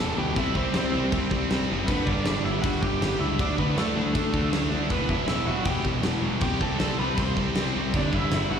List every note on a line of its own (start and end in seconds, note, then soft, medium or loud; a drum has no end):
0.00 0.12 E1 medium
0.00 0.16 E2 medium
0.00 0.16 B2 medium
0.00 0.17 E3 medium
0.00 0.14 A4 medium
0.00 0.18 A5 loud
0.17 0.31 D2 medium
0.17 0.35 E2 medium
0.17 0.35 B2 medium
0.17 0.36 E3 loud
0.17 0.35 G4 medium
0.17 0.36 G5 loud
0.36 0.50 C2 medium
0.36 0.53 C3 loud
0.36 0.55 G3 loud
0.36 0.55 C4 loud
0.36 0.54 E4 medium
0.36 0.57 E5 loud
0.36 kick loud
0.36 crash medium
0.55 0.69 C2 loud
0.55 0.72 C3 medium
0.55 0.74 G3 medium
0.55 0.73 C4 medium
0.55 0.75 C5 medium
0.55 kick medium
0.73 0.88 C2 medium
0.73 0.91 C3 medium
0.73 0.93 G3 loud
0.73 0.92 C4 loud
0.73 1.47 C4 medium
0.73 snare loud
0.73 crash medium
0.78 1.48 C5 medium
0.92 1.08 C2 loud
0.92 1.11 C3 medium
0.92 1.11 G3 medium
0.92 1.12 C4 loud
1.12 1.40 C2 medium
1.12 1.30 C3 loud
1.12 1.30 G3 loud
1.12 1.31 C4 medium
1.12 kick loud
1.12 crash medium
1.31 1.49 C3 medium
1.31 1.49 G3 loud
1.31 1.50 C4 loud
1.31 kick loud
1.50 1.65 C2 loud
1.50 1.68 C3 medium
1.50 1.69 G3 medium
1.50 1.68 C4 medium
1.50 snare loud
1.50 crash medium
1.69 1.83 F#1 medium
1.69 1.87 C3 medium
1.69 1.87 G3 loud
1.69 1.87 C4 medium
1.88 2.02 G1 loud
1.88 2.05 G2 loud
1.88 2.06 D3 loud
1.88 2.07 G3 loud
1.88 2.06 B3 medium
1.88 2.07 B4 loud
1.88 kick loud
1.88 crash medium
2.06 2.21 G1 loud
2.06 2.24 G2 medium
2.06 2.25 D3 medium
2.06 2.25 G3 loud
2.06 2.24 D4 medium
2.06 2.24 D5 loud
2.06 kick medium
2.25 2.39 G1 medium
2.25 2.44 G2 medium
2.25 2.44 D3 medium
2.25 2.45 G3 loud
2.25 2.44 D4 medium
2.25 2.44 D5 loud
2.25 snare loud
2.25 crash medium
2.44 2.59 G1 medium
2.44 2.63 G2 medium
2.44 2.63 D3 medium
2.44 2.65 G3 medium
2.44 2.61 E4 medium
2.44 2.64 E5 loud
2.62 2.77 G1 medium
2.62 2.82 G2 medium
2.62 2.83 D3 medium
2.62 2.81 F#4 medium
2.62 2.81 F#5 loud
2.62 kick loud
2.62 crash medium
2.66 2.83 G3 loud
2.81 2.96 G1 loud
2.81 3.00 G2 medium
2.81 3.00 D3 medium
2.81 3.01 G3 medium
2.81 3.18 G4 medium
2.81 3.20 G5 loud
2.81 kick medium
3.01 3.16 G1 loud
3.01 3.20 G2 medium
3.01 3.20 D3 medium
3.01 3.20 G3 medium
3.01 snare loud
3.01 crash medium
3.19 3.34 C#2 loud
3.19 3.38 G2 medium
3.19 3.38 D3 medium
3.19 3.39 G3 loud
3.19 3.38 E4 medium
3.19 3.39 E5 loud
3.39 3.53 D2 medium
3.39 3.57 D3 loud
3.39 3.58 A3 loud
3.39 3.58 D4 loud
3.39 3.58 D4 medium
3.39 3.58 D5 medium
3.39 kick loud
3.39 crash medium
3.58 3.72 D2 medium
3.58 3.75 D3 medium
3.58 3.76 A3 medium
3.58 3.76 B3 medium
3.58 3.76 D4 medium
3.58 3.77 B4 loud
3.58 kick medium
3.76 3.91 D2 medium
3.76 3.95 D3 loud
3.76 4.49 A3 medium
3.76 3.96 A3 medium
3.76 3.96 D4 medium
3.76 4.49 A4 medium
3.76 snare loud
3.76 crash medium
3.96 4.10 D2 loud
3.96 4.14 D3 medium
3.96 4.15 A3 medium
3.96 4.15 D4 medium
4.15 4.43 D2 medium
4.15 4.33 D3 loud
4.15 4.34 A3 medium
4.15 4.34 D4 loud
4.15 kick loud
4.15 crash medium
4.34 4.52 D3 medium
4.34 4.53 A3 medium
4.34 4.53 D4 medium
4.34 kick medium
4.52 4.66 D2 medium
4.52 4.71 D3 medium
4.52 4.71 A3 medium
4.52 4.72 D4 medium
4.52 snare loud
4.52 crash medium
4.71 4.85 D2 medium
4.71 4.90 D3 medium
4.71 4.90 A3 medium
4.71 4.90 D4 loud
4.90 5.05 E1 medium
4.90 5.09 E2 loud
4.90 5.09 B2 loud
4.90 5.10 E3 loud
4.90 5.09 B3 medium
4.90 5.10 B4 medium
4.90 kick loud
4.90 crash medium
5.09 5.23 E1 loud
5.09 5.27 E2 medium
5.09 5.27 B2 medium
5.09 5.28 E3 medium
5.09 5.27 E4 medium
5.09 5.27 E5 loud
5.09 kick medium
5.28 5.42 E1 medium
5.28 5.46 E2 loud
5.28 5.46 B2 loud
5.28 5.47 E3 loud
5.28 5.46 E4 medium
5.28 5.46 E5 medium
5.28 snare loud
5.28 crash medium
5.47 5.61 E1 medium
5.47 5.65 E2 medium
5.47 5.66 B2 medium
5.47 5.66 E3 medium
5.47 5.65 F#4 medium
5.47 5.65 F#5 medium
5.65 5.80 E1 loud
5.65 5.84 E2 medium
5.65 5.85 B2 medium
5.65 5.86 E3 loud
5.65 5.84 G4 medium
5.65 5.83 G5 loud
5.65 kick loud
5.65 crash medium
5.85 5.99 E1 medium
5.85 6.03 E2 medium
5.85 6.04 B2 loud
5.85 6.04 E3 medium
5.85 kick medium
6.03 6.17 E1 loud
6.03 6.22 E2 medium
6.03 6.22 B2 medium
6.03 6.23 E3 loud
6.03 snare loud
6.03 crash medium
6.22 6.36 E1 loud
6.22 6.41 E2 medium
6.22 6.41 B2 medium
6.22 6.42 E3 loud
6.41 6.56 C2 medium
6.41 6.60 C3 loud
6.41 6.62 G3 loud
6.41 6.62 C4 loud
6.41 6.60 G4 medium
6.41 6.62 G5 medium
6.41 kick loud
6.41 crash medium
6.61 6.75 C2 loud
6.61 6.79 C3 medium
6.61 6.80 G3 medium
6.61 6.80 C4 medium
6.61 6.79 A4 medium
6.61 6.79 A5 medium
6.61 kick loud
6.80 6.94 C2 medium
6.80 6.98 C3 loud
6.80 7.00 G3 loud
6.80 7.00 C4 loud
6.80 6.98 A4 medium
6.80 6.98 A5 loud
6.80 snare loud
6.80 crash medium
6.99 7.13 C2 medium
6.99 7.17 C3 medium
6.99 7.18 G3 medium
6.99 7.18 C4 loud
6.99 7.17 B4 medium
6.99 7.19 B5 medium
7.17 7.46 C2 medium
7.17 7.36 C3 loud
7.17 7.36 G3 loud
7.17 7.36 C4 loud
7.17 7.36 C5 medium
7.17 7.37 C6 medium
7.17 kick loud
7.17 crash medium
7.37 7.55 C3 medium
7.37 7.55 G3 medium
7.37 7.56 C4 medium
7.37 kick medium
7.55 7.70 C2 medium
7.55 7.73 C3 medium
7.55 7.74 G3 medium
7.55 7.74 C4 medium
7.55 snare loud
7.55 crash medium
7.75 7.89 C2 loud
7.75 7.92 C3 loud
7.75 7.93 G3 medium
7.75 7.93 C4 loud
7.94 8.08 G1 medium
7.94 8.11 G2 loud
7.94 8.12 D3 loud
7.94 8.12 G3 loud
7.94 8.13 D4 medium
7.94 8.14 D5 medium
7.94 kick loud
7.94 crash medium
8.13 8.27 G1 medium
8.13 8.31 G2 medium
8.13 8.31 D3 medium
8.13 8.31 G3 medium
8.13 8.31 E4 medium
8.13 8.33 E5 loud
8.13 kick medium
8.31 8.45 G1 medium
8.31 8.48 G2 medium
8.31 8.49 D3 medium
8.31 8.50 G3 loud
8.31 8.50 E4 medium
8.31 8.50 E5 loud
8.31 snare loud
8.31 crash medium
8.50 8.60 G1 loud
8.50 8.60 G2 medium
8.50 8.60 D3 loud
8.50 8.60 G3 loud
8.50 8.60 F#4 medium
8.50 8.60 F#5 loud